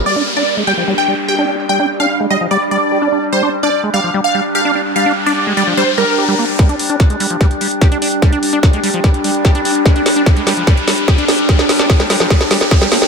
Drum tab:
HH |----------------|----------------|----------------|----------------|
SD |----------------|----------------|----------------|----------------|
BD |----------------|----------------|----------------|----------------|

HH |xxoxxxoxxxoxxxo-|xxoxxxoxxxoxxxox|xxoxxxoxxxoxxxox|xxo-xxoxxxoxxxo-|
SD |o---o---o---o---|o---o---o---o---|o-o-o-o-o-o-o-o-|oooooooooooooooo|
BD |o---o---o---o---|o---o---o---o---|o---o---o---o---|o---o---o---o---|